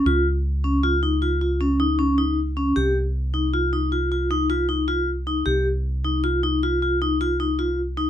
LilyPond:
<<
  \new Staff \with { instrumentName = "Vibraphone" } { \time 7/4 \key c \phrygian \tempo 4 = 155 f'4 r8 des'8 f'8 ees'8 f'8 f'8 des'8 ees'8 des'8 ees'4 des'8 | g'4 r8 ees'8 f'8 ees'8 f'8 f'8 ees'8 f'8 ees'8 f'4 ees'8 | g'4 r8 ees'8 f'8 ees'8 f'8 f'8 ees'8 f'8 ees'8 f'4 ees'8 | }
  \new Staff \with { instrumentName = "Fingered electric bass" } { \clef bass \time 7/4 \key c \phrygian des,1.~ des,4 | c,1.~ c,4 | c,1.~ c,4 | }
>>